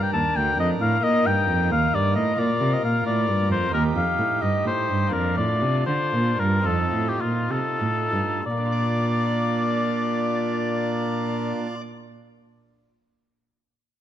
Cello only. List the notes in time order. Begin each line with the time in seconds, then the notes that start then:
Already playing: G2
0.13 D#2
0.36 D2
0.58 F2
0.80 A2
1.03 A#2
1.26 G2
1.47 F2
1.70 D#2
1.93 G2
2.15 A2
2.37 A#2
2.60 C3
2.82 A#2
3.05 A2
3.28 G2
3.50 F2
3.72 D#2
3.95 F2
4.19 A2
4.42 G2
4.65 A2
4.88 G2
5.13 F2
5.37 A2
5.62 C3
5.87 D3
6.13 A#2
6.39 G2
6.66 F2
6.93 A2
7.21 A#2
7.50 C3
7.81 A2
8.12 G2
8.45 A#2